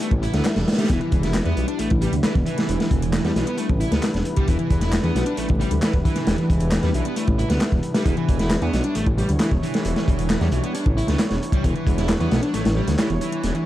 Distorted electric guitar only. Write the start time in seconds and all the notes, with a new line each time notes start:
0.22 E4
0.33 B3
0.78 G3
0.90 E3
1.01 E3
1.23 E4
1.45 B3
1.68 D4
1.79 A3
2.01 G3
2.23 E3
2.46 E3
2.80 E3
3.25 G3
3.36 E3
3.47 B3
3.58 A3
3.80 E4
3.92 B3
4.37 G3
4.47 E3
4.59 E3
4.81 E4
5.04 B3
5.26 D4
5.37 A3
5.60 G3
5.82 E3
6.04 E3
6.38 E3
6.83 G3
6.94 E3
7.05 B3
7.16 A3
7.39 E4
7.50 B3
7.95 G3
8.06 E3
8.17 E3
8.40 E4
8.62 B3
8.84 D4
8.95 A3
9.18 G3
9.40 E3
9.62 E3
9.96 E3
10.41 G3
10.52 E3
10.63 B3
10.74 D4
10.97 E4
11.08 B3
11.53 G3
11.64 E3
11.75 E3
11.98 E4
12.20 B3
12.43 D4
12.54 A3
12.76 G3
12.98 E3
13.21 E3
13.54 E3